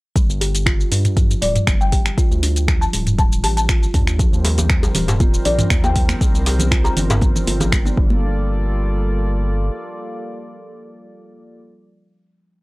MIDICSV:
0, 0, Header, 1, 7, 480
1, 0, Start_track
1, 0, Key_signature, -2, "minor"
1, 0, Tempo, 504202
1, 150, Time_signature, 4, 2, 24, 8
1, 12022, End_track
2, 0, Start_track
2, 0, Title_t, "Marimba"
2, 0, Program_c, 0, 12
2, 1349, Note_on_c, 0, 74, 90
2, 1561, Note_off_c, 0, 74, 0
2, 1720, Note_on_c, 0, 79, 90
2, 1926, Note_off_c, 0, 79, 0
2, 2678, Note_on_c, 0, 81, 92
2, 2886, Note_off_c, 0, 81, 0
2, 3032, Note_on_c, 0, 81, 90
2, 3243, Note_off_c, 0, 81, 0
2, 3271, Note_on_c, 0, 81, 94
2, 3373, Note_off_c, 0, 81, 0
2, 3397, Note_on_c, 0, 81, 86
2, 4041, Note_off_c, 0, 81, 0
2, 5192, Note_on_c, 0, 74, 96
2, 5403, Note_off_c, 0, 74, 0
2, 5562, Note_on_c, 0, 79, 94
2, 5768, Note_off_c, 0, 79, 0
2, 6516, Note_on_c, 0, 82, 97
2, 6724, Note_off_c, 0, 82, 0
2, 12022, End_track
3, 0, Start_track
3, 0, Title_t, "Analog synth pad"
3, 0, Program_c, 1, 89
3, 3993, Note_on_c, 1, 70, 80
3, 3993, Note_on_c, 1, 72, 95
3, 3994, Note_on_c, 1, 51, 76
3, 3995, Note_on_c, 1, 55, 88
3, 3995, Note_on_c, 1, 60, 81
3, 7556, Note_off_c, 1, 51, 0
3, 7556, Note_off_c, 1, 70, 0
3, 7556, Note_off_c, 1, 72, 0
3, 7557, Note_off_c, 1, 55, 0
3, 7557, Note_off_c, 1, 60, 0
3, 7586, Note_on_c, 1, 58, 81
3, 7587, Note_on_c, 1, 65, 76
3, 7587, Note_on_c, 1, 69, 77
3, 7588, Note_on_c, 1, 55, 83
3, 7588, Note_on_c, 1, 74, 94
3, 11053, Note_off_c, 1, 58, 0
3, 11053, Note_off_c, 1, 69, 0
3, 11054, Note_off_c, 1, 55, 0
3, 11054, Note_off_c, 1, 65, 0
3, 11055, Note_off_c, 1, 74, 0
3, 12022, End_track
4, 0, Start_track
4, 0, Title_t, "Kalimba"
4, 0, Program_c, 2, 108
4, 150, Note_on_c, 2, 55, 79
4, 264, Note_off_c, 2, 55, 0
4, 392, Note_on_c, 2, 67, 79
4, 512, Note_off_c, 2, 67, 0
4, 632, Note_on_c, 2, 65, 95
4, 745, Note_off_c, 2, 65, 0
4, 871, Note_on_c, 2, 62, 73
4, 992, Note_off_c, 2, 62, 0
4, 1111, Note_on_c, 2, 53, 83
4, 1231, Note_off_c, 2, 53, 0
4, 1351, Note_on_c, 2, 55, 76
4, 1465, Note_off_c, 2, 55, 0
4, 1590, Note_on_c, 2, 55, 78
4, 1704, Note_off_c, 2, 55, 0
4, 1832, Note_on_c, 2, 67, 76
4, 1952, Note_off_c, 2, 67, 0
4, 2071, Note_on_c, 2, 65, 102
4, 2185, Note_off_c, 2, 65, 0
4, 2311, Note_on_c, 2, 62, 80
4, 2431, Note_off_c, 2, 62, 0
4, 2552, Note_on_c, 2, 53, 80
4, 2672, Note_off_c, 2, 53, 0
4, 2792, Note_on_c, 2, 55, 76
4, 2905, Note_off_c, 2, 55, 0
4, 3033, Note_on_c, 2, 55, 81
4, 3146, Note_off_c, 2, 55, 0
4, 3274, Note_on_c, 2, 67, 79
4, 3393, Note_off_c, 2, 67, 0
4, 3513, Note_on_c, 2, 65, 96
4, 3626, Note_off_c, 2, 65, 0
4, 3752, Note_on_c, 2, 62, 76
4, 3872, Note_off_c, 2, 62, 0
4, 3993, Note_on_c, 2, 53, 83
4, 4112, Note_off_c, 2, 53, 0
4, 4232, Note_on_c, 2, 55, 82
4, 4346, Note_off_c, 2, 55, 0
4, 4474, Note_on_c, 2, 55, 80
4, 4586, Note_off_c, 2, 55, 0
4, 4713, Note_on_c, 2, 67, 77
4, 4832, Note_off_c, 2, 67, 0
4, 4954, Note_on_c, 2, 65, 108
4, 5066, Note_off_c, 2, 65, 0
4, 5195, Note_on_c, 2, 62, 77
4, 5313, Note_off_c, 2, 62, 0
4, 5434, Note_on_c, 2, 53, 81
4, 5553, Note_off_c, 2, 53, 0
4, 5673, Note_on_c, 2, 55, 79
4, 5786, Note_off_c, 2, 55, 0
4, 5913, Note_on_c, 2, 55, 86
4, 6026, Note_off_c, 2, 55, 0
4, 6154, Note_on_c, 2, 67, 81
4, 6273, Note_off_c, 2, 67, 0
4, 6394, Note_on_c, 2, 65, 107
4, 6506, Note_off_c, 2, 65, 0
4, 6633, Note_on_c, 2, 62, 77
4, 6752, Note_off_c, 2, 62, 0
4, 6873, Note_on_c, 2, 53, 84
4, 6993, Note_off_c, 2, 53, 0
4, 7114, Note_on_c, 2, 65, 85
4, 7226, Note_off_c, 2, 65, 0
4, 7353, Note_on_c, 2, 55, 80
4, 7466, Note_off_c, 2, 55, 0
4, 7478, Note_on_c, 2, 62, 102
4, 7539, Note_off_c, 2, 62, 0
4, 7592, Note_on_c, 2, 55, 93
4, 8038, Note_off_c, 2, 55, 0
4, 12022, End_track
5, 0, Start_track
5, 0, Title_t, "Analog synth bass"
5, 0, Program_c, 3, 38
5, 276, Note_on_c, 3, 31, 98
5, 805, Note_off_c, 3, 31, 0
5, 872, Note_on_c, 3, 43, 82
5, 1285, Note_off_c, 3, 43, 0
5, 1349, Note_on_c, 3, 26, 80
5, 1507, Note_off_c, 3, 26, 0
5, 1591, Note_on_c, 3, 31, 88
5, 2005, Note_off_c, 3, 31, 0
5, 2197, Note_on_c, 3, 38, 97
5, 2725, Note_off_c, 3, 38, 0
5, 2790, Note_on_c, 3, 26, 83
5, 3268, Note_on_c, 3, 33, 103
5, 3282, Note_off_c, 3, 26, 0
5, 3684, Note_off_c, 3, 33, 0
5, 3751, Note_on_c, 3, 39, 88
5, 4044, Note_off_c, 3, 39, 0
5, 4116, Note_on_c, 3, 39, 99
5, 4644, Note_off_c, 3, 39, 0
5, 4711, Note_on_c, 3, 27, 83
5, 5125, Note_off_c, 3, 27, 0
5, 5190, Note_on_c, 3, 34, 82
5, 5348, Note_off_c, 3, 34, 0
5, 5432, Note_on_c, 3, 39, 84
5, 5845, Note_off_c, 3, 39, 0
5, 6038, Note_on_c, 3, 36, 101
5, 6565, Note_off_c, 3, 36, 0
5, 6630, Note_on_c, 3, 31, 85
5, 7045, Note_off_c, 3, 31, 0
5, 7112, Note_on_c, 3, 31, 102
5, 7525, Note_off_c, 3, 31, 0
5, 7591, Note_on_c, 3, 31, 95
5, 9233, Note_off_c, 3, 31, 0
5, 12022, End_track
6, 0, Start_track
6, 0, Title_t, "Djembe"
6, 3988, Note_on_c, 9, 63, 62
6, 4083, Note_off_c, 9, 63, 0
6, 4232, Note_on_c, 9, 62, 85
6, 4327, Note_off_c, 9, 62, 0
6, 4362, Note_on_c, 9, 63, 87
6, 4457, Note_off_c, 9, 63, 0
6, 4598, Note_on_c, 9, 63, 104
6, 4599, Note_on_c, 9, 62, 86
6, 4693, Note_off_c, 9, 63, 0
6, 4694, Note_off_c, 9, 62, 0
6, 4834, Note_on_c, 9, 63, 82
6, 4843, Note_on_c, 9, 62, 100
6, 4930, Note_off_c, 9, 63, 0
6, 4938, Note_off_c, 9, 62, 0
6, 5197, Note_on_c, 9, 63, 68
6, 5292, Note_off_c, 9, 63, 0
6, 5558, Note_on_c, 9, 62, 86
6, 5653, Note_off_c, 9, 62, 0
6, 5910, Note_on_c, 9, 63, 67
6, 6005, Note_off_c, 9, 63, 0
6, 6154, Note_on_c, 9, 62, 85
6, 6250, Note_off_c, 9, 62, 0
6, 6275, Note_on_c, 9, 63, 81
6, 6370, Note_off_c, 9, 63, 0
6, 6513, Note_on_c, 9, 63, 93
6, 6520, Note_on_c, 9, 62, 79
6, 6608, Note_off_c, 9, 63, 0
6, 6615, Note_off_c, 9, 62, 0
6, 6759, Note_on_c, 9, 63, 79
6, 6764, Note_on_c, 9, 62, 113
6, 6854, Note_off_c, 9, 63, 0
6, 6859, Note_off_c, 9, 62, 0
6, 7241, Note_on_c, 9, 63, 107
6, 7336, Note_off_c, 9, 63, 0
6, 12022, End_track
7, 0, Start_track
7, 0, Title_t, "Drums"
7, 151, Note_on_c, 9, 36, 108
7, 153, Note_on_c, 9, 42, 54
7, 159, Note_on_c, 9, 82, 97
7, 246, Note_off_c, 9, 36, 0
7, 248, Note_off_c, 9, 42, 0
7, 254, Note_off_c, 9, 82, 0
7, 286, Note_on_c, 9, 82, 53
7, 381, Note_off_c, 9, 82, 0
7, 395, Note_on_c, 9, 46, 94
7, 401, Note_on_c, 9, 82, 54
7, 490, Note_off_c, 9, 46, 0
7, 496, Note_off_c, 9, 82, 0
7, 521, Note_on_c, 9, 42, 44
7, 527, Note_on_c, 9, 82, 95
7, 616, Note_off_c, 9, 42, 0
7, 622, Note_off_c, 9, 82, 0
7, 631, Note_on_c, 9, 36, 119
7, 634, Note_on_c, 9, 26, 110
7, 634, Note_on_c, 9, 42, 54
7, 641, Note_on_c, 9, 82, 52
7, 726, Note_off_c, 9, 36, 0
7, 730, Note_off_c, 9, 26, 0
7, 730, Note_off_c, 9, 42, 0
7, 736, Note_off_c, 9, 82, 0
7, 766, Note_on_c, 9, 82, 51
7, 861, Note_off_c, 9, 82, 0
7, 873, Note_on_c, 9, 46, 83
7, 879, Note_on_c, 9, 82, 90
7, 968, Note_off_c, 9, 46, 0
7, 974, Note_off_c, 9, 82, 0
7, 999, Note_on_c, 9, 42, 45
7, 999, Note_on_c, 9, 45, 84
7, 1006, Note_on_c, 9, 82, 51
7, 1095, Note_off_c, 9, 42, 0
7, 1095, Note_off_c, 9, 45, 0
7, 1101, Note_off_c, 9, 82, 0
7, 1111, Note_on_c, 9, 36, 119
7, 1111, Note_on_c, 9, 42, 56
7, 1117, Note_on_c, 9, 82, 52
7, 1206, Note_off_c, 9, 36, 0
7, 1206, Note_off_c, 9, 42, 0
7, 1213, Note_off_c, 9, 82, 0
7, 1244, Note_on_c, 9, 82, 88
7, 1339, Note_off_c, 9, 82, 0
7, 1353, Note_on_c, 9, 46, 96
7, 1359, Note_on_c, 9, 82, 54
7, 1448, Note_off_c, 9, 46, 0
7, 1454, Note_off_c, 9, 82, 0
7, 1480, Note_on_c, 9, 42, 44
7, 1480, Note_on_c, 9, 45, 78
7, 1487, Note_on_c, 9, 82, 53
7, 1576, Note_off_c, 9, 42, 0
7, 1576, Note_off_c, 9, 45, 0
7, 1582, Note_off_c, 9, 82, 0
7, 1591, Note_on_c, 9, 36, 119
7, 1592, Note_on_c, 9, 26, 112
7, 1592, Note_on_c, 9, 42, 54
7, 1598, Note_on_c, 9, 82, 92
7, 1687, Note_off_c, 9, 26, 0
7, 1687, Note_off_c, 9, 36, 0
7, 1687, Note_off_c, 9, 42, 0
7, 1693, Note_off_c, 9, 82, 0
7, 1724, Note_on_c, 9, 82, 49
7, 1819, Note_off_c, 9, 82, 0
7, 1831, Note_on_c, 9, 36, 86
7, 1831, Note_on_c, 9, 46, 80
7, 1837, Note_on_c, 9, 82, 50
7, 1926, Note_off_c, 9, 46, 0
7, 1927, Note_off_c, 9, 36, 0
7, 1932, Note_off_c, 9, 82, 0
7, 1958, Note_on_c, 9, 26, 64
7, 1958, Note_on_c, 9, 42, 46
7, 1964, Note_on_c, 9, 82, 53
7, 2053, Note_off_c, 9, 26, 0
7, 2053, Note_off_c, 9, 42, 0
7, 2059, Note_off_c, 9, 82, 0
7, 2072, Note_on_c, 9, 36, 116
7, 2073, Note_on_c, 9, 42, 54
7, 2079, Note_on_c, 9, 82, 94
7, 2167, Note_off_c, 9, 36, 0
7, 2168, Note_off_c, 9, 42, 0
7, 2175, Note_off_c, 9, 82, 0
7, 2205, Note_on_c, 9, 82, 54
7, 2301, Note_off_c, 9, 82, 0
7, 2313, Note_on_c, 9, 46, 95
7, 2319, Note_on_c, 9, 82, 56
7, 2408, Note_off_c, 9, 46, 0
7, 2414, Note_off_c, 9, 82, 0
7, 2439, Note_on_c, 9, 42, 43
7, 2445, Note_on_c, 9, 82, 96
7, 2534, Note_off_c, 9, 42, 0
7, 2541, Note_off_c, 9, 82, 0
7, 2552, Note_on_c, 9, 36, 122
7, 2554, Note_on_c, 9, 26, 111
7, 2554, Note_on_c, 9, 42, 55
7, 2560, Note_on_c, 9, 82, 58
7, 2647, Note_off_c, 9, 36, 0
7, 2649, Note_off_c, 9, 26, 0
7, 2649, Note_off_c, 9, 42, 0
7, 2656, Note_off_c, 9, 82, 0
7, 2685, Note_on_c, 9, 82, 57
7, 2780, Note_off_c, 9, 82, 0
7, 2792, Note_on_c, 9, 46, 81
7, 2799, Note_on_c, 9, 82, 99
7, 2888, Note_off_c, 9, 46, 0
7, 2894, Note_off_c, 9, 82, 0
7, 2920, Note_on_c, 9, 42, 46
7, 2920, Note_on_c, 9, 45, 78
7, 2926, Note_on_c, 9, 82, 57
7, 3015, Note_off_c, 9, 42, 0
7, 3015, Note_off_c, 9, 45, 0
7, 3021, Note_off_c, 9, 82, 0
7, 3032, Note_on_c, 9, 36, 121
7, 3032, Note_on_c, 9, 42, 57
7, 3039, Note_on_c, 9, 82, 57
7, 3127, Note_off_c, 9, 36, 0
7, 3128, Note_off_c, 9, 42, 0
7, 3134, Note_off_c, 9, 82, 0
7, 3164, Note_on_c, 9, 82, 92
7, 3260, Note_off_c, 9, 82, 0
7, 3273, Note_on_c, 9, 46, 92
7, 3279, Note_on_c, 9, 82, 60
7, 3368, Note_off_c, 9, 46, 0
7, 3374, Note_off_c, 9, 82, 0
7, 3400, Note_on_c, 9, 42, 43
7, 3406, Note_on_c, 9, 82, 53
7, 3495, Note_off_c, 9, 42, 0
7, 3501, Note_off_c, 9, 82, 0
7, 3512, Note_on_c, 9, 26, 107
7, 3512, Note_on_c, 9, 36, 118
7, 3512, Note_on_c, 9, 42, 52
7, 3519, Note_on_c, 9, 82, 92
7, 3607, Note_off_c, 9, 36, 0
7, 3608, Note_off_c, 9, 26, 0
7, 3608, Note_off_c, 9, 42, 0
7, 3614, Note_off_c, 9, 82, 0
7, 3646, Note_on_c, 9, 82, 55
7, 3741, Note_off_c, 9, 82, 0
7, 3752, Note_on_c, 9, 36, 88
7, 3752, Note_on_c, 9, 45, 77
7, 3752, Note_on_c, 9, 46, 77
7, 3758, Note_on_c, 9, 82, 52
7, 3847, Note_off_c, 9, 45, 0
7, 3847, Note_off_c, 9, 46, 0
7, 3848, Note_off_c, 9, 36, 0
7, 3853, Note_off_c, 9, 82, 0
7, 3879, Note_on_c, 9, 26, 66
7, 3879, Note_on_c, 9, 42, 44
7, 3885, Note_on_c, 9, 82, 54
7, 3974, Note_off_c, 9, 26, 0
7, 3974, Note_off_c, 9, 42, 0
7, 3980, Note_off_c, 9, 82, 0
7, 3992, Note_on_c, 9, 42, 52
7, 3993, Note_on_c, 9, 36, 124
7, 3999, Note_on_c, 9, 82, 99
7, 4088, Note_off_c, 9, 36, 0
7, 4088, Note_off_c, 9, 42, 0
7, 4094, Note_off_c, 9, 82, 0
7, 4126, Note_on_c, 9, 82, 55
7, 4221, Note_off_c, 9, 82, 0
7, 4233, Note_on_c, 9, 46, 94
7, 4239, Note_on_c, 9, 82, 56
7, 4328, Note_off_c, 9, 46, 0
7, 4334, Note_off_c, 9, 82, 0
7, 4358, Note_on_c, 9, 42, 43
7, 4360, Note_on_c, 9, 63, 70
7, 4363, Note_on_c, 9, 64, 83
7, 4365, Note_on_c, 9, 82, 102
7, 4454, Note_off_c, 9, 42, 0
7, 4455, Note_off_c, 9, 63, 0
7, 4458, Note_off_c, 9, 64, 0
7, 4460, Note_off_c, 9, 82, 0
7, 4470, Note_on_c, 9, 26, 112
7, 4470, Note_on_c, 9, 42, 54
7, 4472, Note_on_c, 9, 36, 127
7, 4476, Note_on_c, 9, 82, 57
7, 4565, Note_off_c, 9, 26, 0
7, 4565, Note_off_c, 9, 42, 0
7, 4568, Note_off_c, 9, 36, 0
7, 4572, Note_off_c, 9, 82, 0
7, 4604, Note_on_c, 9, 82, 57
7, 4699, Note_off_c, 9, 82, 0
7, 4709, Note_on_c, 9, 46, 82
7, 4712, Note_on_c, 9, 64, 100
7, 4716, Note_on_c, 9, 82, 99
7, 4805, Note_off_c, 9, 46, 0
7, 4807, Note_off_c, 9, 64, 0
7, 4811, Note_off_c, 9, 82, 0
7, 4839, Note_on_c, 9, 42, 45
7, 4839, Note_on_c, 9, 45, 83
7, 4845, Note_on_c, 9, 82, 57
7, 4934, Note_off_c, 9, 42, 0
7, 4934, Note_off_c, 9, 45, 0
7, 4940, Note_off_c, 9, 82, 0
7, 4952, Note_on_c, 9, 36, 127
7, 4952, Note_on_c, 9, 42, 56
7, 4957, Note_on_c, 9, 63, 98
7, 4958, Note_on_c, 9, 82, 60
7, 5047, Note_off_c, 9, 42, 0
7, 5048, Note_off_c, 9, 36, 0
7, 5053, Note_off_c, 9, 63, 0
7, 5053, Note_off_c, 9, 82, 0
7, 5083, Note_on_c, 9, 82, 91
7, 5178, Note_off_c, 9, 82, 0
7, 5191, Note_on_c, 9, 46, 90
7, 5197, Note_on_c, 9, 82, 60
7, 5286, Note_off_c, 9, 46, 0
7, 5293, Note_off_c, 9, 82, 0
7, 5318, Note_on_c, 9, 64, 94
7, 5319, Note_on_c, 9, 42, 42
7, 5319, Note_on_c, 9, 45, 79
7, 5325, Note_on_c, 9, 82, 57
7, 5414, Note_off_c, 9, 42, 0
7, 5414, Note_off_c, 9, 45, 0
7, 5414, Note_off_c, 9, 64, 0
7, 5420, Note_off_c, 9, 82, 0
7, 5430, Note_on_c, 9, 26, 109
7, 5430, Note_on_c, 9, 42, 53
7, 5430, Note_on_c, 9, 63, 67
7, 5432, Note_on_c, 9, 36, 126
7, 5436, Note_on_c, 9, 82, 96
7, 5525, Note_off_c, 9, 26, 0
7, 5525, Note_off_c, 9, 42, 0
7, 5526, Note_off_c, 9, 63, 0
7, 5527, Note_off_c, 9, 36, 0
7, 5531, Note_off_c, 9, 82, 0
7, 5558, Note_on_c, 9, 63, 89
7, 5565, Note_on_c, 9, 82, 55
7, 5653, Note_off_c, 9, 63, 0
7, 5660, Note_off_c, 9, 82, 0
7, 5671, Note_on_c, 9, 46, 71
7, 5672, Note_on_c, 9, 36, 91
7, 5677, Note_on_c, 9, 82, 54
7, 5766, Note_off_c, 9, 46, 0
7, 5767, Note_off_c, 9, 36, 0
7, 5772, Note_off_c, 9, 82, 0
7, 5793, Note_on_c, 9, 63, 96
7, 5798, Note_on_c, 9, 26, 63
7, 5798, Note_on_c, 9, 42, 44
7, 5804, Note_on_c, 9, 82, 59
7, 5888, Note_off_c, 9, 63, 0
7, 5893, Note_off_c, 9, 26, 0
7, 5893, Note_off_c, 9, 42, 0
7, 5899, Note_off_c, 9, 82, 0
7, 5912, Note_on_c, 9, 36, 118
7, 5913, Note_on_c, 9, 42, 55
7, 5919, Note_on_c, 9, 82, 98
7, 6007, Note_off_c, 9, 36, 0
7, 6008, Note_off_c, 9, 42, 0
7, 6014, Note_off_c, 9, 82, 0
7, 6046, Note_on_c, 9, 82, 56
7, 6141, Note_off_c, 9, 82, 0
7, 6152, Note_on_c, 9, 46, 89
7, 6159, Note_on_c, 9, 82, 57
7, 6248, Note_off_c, 9, 46, 0
7, 6254, Note_off_c, 9, 82, 0
7, 6273, Note_on_c, 9, 64, 93
7, 6280, Note_on_c, 9, 42, 46
7, 6286, Note_on_c, 9, 82, 104
7, 6287, Note_on_c, 9, 63, 72
7, 6368, Note_off_c, 9, 64, 0
7, 6375, Note_off_c, 9, 42, 0
7, 6381, Note_off_c, 9, 82, 0
7, 6382, Note_off_c, 9, 63, 0
7, 6392, Note_on_c, 9, 36, 127
7, 6395, Note_on_c, 9, 26, 104
7, 6395, Note_on_c, 9, 42, 53
7, 6402, Note_on_c, 9, 82, 55
7, 6487, Note_off_c, 9, 36, 0
7, 6490, Note_off_c, 9, 26, 0
7, 6490, Note_off_c, 9, 42, 0
7, 6497, Note_off_c, 9, 82, 0
7, 6527, Note_on_c, 9, 82, 59
7, 6622, Note_off_c, 9, 82, 0
7, 6632, Note_on_c, 9, 64, 92
7, 6633, Note_on_c, 9, 46, 75
7, 6639, Note_on_c, 9, 82, 99
7, 6728, Note_off_c, 9, 46, 0
7, 6728, Note_off_c, 9, 64, 0
7, 6734, Note_off_c, 9, 82, 0
7, 6760, Note_on_c, 9, 42, 43
7, 6760, Note_on_c, 9, 45, 90
7, 6766, Note_on_c, 9, 82, 55
7, 6855, Note_off_c, 9, 42, 0
7, 6855, Note_off_c, 9, 45, 0
7, 6861, Note_off_c, 9, 82, 0
7, 6868, Note_on_c, 9, 63, 99
7, 6872, Note_on_c, 9, 36, 127
7, 6874, Note_on_c, 9, 42, 55
7, 6880, Note_on_c, 9, 82, 54
7, 6963, Note_off_c, 9, 63, 0
7, 6967, Note_off_c, 9, 36, 0
7, 6969, Note_off_c, 9, 42, 0
7, 6976, Note_off_c, 9, 82, 0
7, 7003, Note_on_c, 9, 64, 84
7, 7007, Note_on_c, 9, 82, 92
7, 7099, Note_off_c, 9, 64, 0
7, 7102, Note_off_c, 9, 82, 0
7, 7116, Note_on_c, 9, 46, 86
7, 7116, Note_on_c, 9, 63, 111
7, 7122, Note_on_c, 9, 82, 58
7, 7211, Note_off_c, 9, 46, 0
7, 7211, Note_off_c, 9, 63, 0
7, 7217, Note_off_c, 9, 82, 0
7, 7237, Note_on_c, 9, 64, 100
7, 7242, Note_on_c, 9, 42, 41
7, 7249, Note_on_c, 9, 82, 55
7, 7333, Note_off_c, 9, 64, 0
7, 7337, Note_off_c, 9, 42, 0
7, 7344, Note_off_c, 9, 82, 0
7, 7352, Note_on_c, 9, 36, 126
7, 7354, Note_on_c, 9, 26, 106
7, 7354, Note_on_c, 9, 42, 53
7, 7354, Note_on_c, 9, 63, 64
7, 7360, Note_on_c, 9, 82, 93
7, 7447, Note_off_c, 9, 36, 0
7, 7449, Note_off_c, 9, 26, 0
7, 7449, Note_off_c, 9, 42, 0
7, 7449, Note_off_c, 9, 63, 0
7, 7455, Note_off_c, 9, 82, 0
7, 7477, Note_on_c, 9, 63, 96
7, 7487, Note_on_c, 9, 82, 51
7, 7573, Note_off_c, 9, 63, 0
7, 7582, Note_off_c, 9, 82, 0
7, 7592, Note_on_c, 9, 36, 110
7, 7687, Note_off_c, 9, 36, 0
7, 7714, Note_on_c, 9, 63, 102
7, 7810, Note_off_c, 9, 63, 0
7, 12022, End_track
0, 0, End_of_file